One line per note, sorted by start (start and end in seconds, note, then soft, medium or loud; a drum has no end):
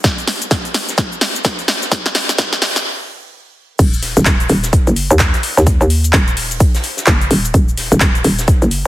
0.04 kick loud
0.04 snare medium
0.04 closed hi-hat medium
0.04 cabasa medium
0.04 shaker medium
0.18 closed hi-hat soft
0.18 cabasa soft
0.27 snare soft
0.27 snare medium
0.27 open hi-hat loud
0.27 shaker medium
0.42 closed hi-hat soft
0.42 cabasa medium
0.51 kick loud
0.51 snare medium
0.51 snare loud
0.51 closed hi-hat medium
0.51 cabasa medium
0.51 shaker medium
0.65 closed hi-hat soft
0.65 cabasa soft
0.74 snare medium
0.74 open hi-hat loud
0.74 shaker medium
0.89 snare medium
0.89 closed hi-hat medium
0.89 cabasa medium
0.98 kick loud
0.98 snare medium
0.98 closed hi-hat medium
0.98 cabasa medium
0.98 shaker medium
1.12 cabasa soft
1.21 snare medium
1.21 open hi-hat loud
1.21 shaker medium
1.35 closed hi-hat soft
1.35 cabasa medium
1.44 kick loud
1.44 snare medium
1.44 snare loud
1.44 closed hi-hat medium
1.44 cabasa medium
1.44 shaker medium
1.59 snare soft
1.59 closed hi-hat soft
1.59 cabasa soft
1.68 snare medium
1.68 open hi-hat loud
1.68 shaker medium
1.82 snare medium
1.82 closed hi-hat soft
1.82 cabasa medium
1.92 kick loud
1.92 snare medium
1.92 closed hi-hat medium
1.92 cabasa medium
1.92 shaker medium
2.06 snare medium
2.06 closed hi-hat soft
2.06 cabasa soft
2.15 snare medium
2.15 open hi-hat loud
2.15 shaker medium
2.29 snare medium
2.29 closed hi-hat soft
2.29 cabasa medium
2.38 kick loud
2.38 snare loud
2.38 closed hi-hat medium
2.38 cabasa medium
2.38 shaker loud
2.53 snare medium
2.53 closed hi-hat soft
2.53 cabasa soft
2.62 snare medium
2.62 open hi-hat medium
2.62 open hi-hat loud
2.76 snare medium
2.76 closed hi-hat soft
2.76 cabasa medium
3.79 4.14 D#1 loud
3.79 kick loud
3.79 closed hi-hat medium
3.79 crash loud
3.79 cabasa medium
3.79 shaker medium
3.93 cabasa soft
4.02 snare soft
4.02 open hi-hat loud
4.02 shaker medium
4.17 4.25 D#1 loud
4.17 closed hi-hat medium
4.17 cabasa medium
4.25 4.48 D#1 loud
4.25 kick loud
4.25 snare loud
4.25 clap loud
4.25 closed hi-hat medium
4.25 cabasa medium
4.25 shaker loud
4.40 closed hi-hat soft
4.40 cabasa soft
4.49 4.85 D#1 loud
4.49 open hi-hat loud
4.49 shaker medium
4.63 snare medium
4.63 closed hi-hat medium
4.63 cabasa medium
4.73 kick loud
4.73 closed hi-hat medium
4.73 cabasa medium
4.73 shaker medium
4.87 5.08 F#1 medium
4.87 closed hi-hat soft
4.87 cabasa soft
4.96 open hi-hat loud
4.96 shaker medium
5.11 5.32 D#2 medium
5.11 closed hi-hat soft
5.11 cabasa medium
5.19 kick loud
5.19 snare loud
5.19 clap loud
5.19 closed hi-hat medium
5.19 cabasa medium
5.19 shaker medium
5.34 snare soft
5.34 closed hi-hat soft
5.34 cabasa soft
5.43 open hi-hat loud
5.43 shaker medium
5.57 5.79 D#2 loud
5.57 snare soft
5.57 closed hi-hat soft
5.57 cabasa medium
5.67 kick loud
5.67 closed hi-hat medium
5.67 cabasa medium
5.67 shaker medium
5.81 6.12 D#2 loud
5.81 cabasa soft
5.90 open hi-hat loud
5.90 shaker medium
6.04 closed hi-hat medium
6.04 cabasa medium
6.13 6.59 D#1 loud
6.13 kick loud
6.13 snare loud
6.13 clap loud
6.13 closed hi-hat medium
6.13 cabasa medium
6.13 shaker medium
6.28 closed hi-hat soft
6.28 cabasa soft
6.37 open hi-hat medium
6.37 open hi-hat loud
6.51 closed hi-hat medium
6.51 cabasa medium
6.60 kick loud
6.60 closed hi-hat medium
6.60 cabasa medium
6.60 shaker medium
6.75 snare medium
6.75 closed hi-hat soft
6.75 cabasa soft
6.84 open hi-hat loud
6.84 shaker medium
6.97 snare soft
6.97 closed hi-hat soft
6.97 cabasa medium
7.06 7.29 F#1 loud
7.06 kick loud
7.06 snare loud
7.06 clap loud
7.06 closed hi-hat medium
7.06 cabasa medium
7.06 shaker medium
7.21 closed hi-hat soft
7.21 cabasa soft
7.31 7.53 D#1 loud
7.31 open hi-hat loud
7.31 shaker medium
7.45 closed hi-hat soft
7.45 closed hi-hat medium
7.45 cabasa medium
7.54 7.89 D#1 loud
7.54 kick loud
7.54 closed hi-hat medium
7.54 cabasa medium
7.54 shaker medium
7.68 cabasa soft
7.78 snare soft
7.78 open hi-hat loud
7.78 shaker medium
7.92 8.00 D#1 loud
7.92 closed hi-hat medium
7.92 cabasa medium
8.00 8.23 D#1 loud
8.00 kick loud
8.00 snare loud
8.00 clap loud
8.00 closed hi-hat medium
8.00 cabasa medium
8.00 shaker medium
8.15 closed hi-hat soft
8.15 cabasa soft
8.24 8.60 D#1 loud
8.24 open hi-hat loud
8.24 shaker medium
8.39 snare medium
8.39 closed hi-hat soft
8.39 cabasa medium
8.48 kick loud
8.48 closed hi-hat medium
8.48 cabasa medium
8.48 shaker medium
8.62 8.83 F#1 loud
8.62 closed hi-hat soft
8.62 cabasa soft
8.71 open hi-hat loud
8.71 shaker medium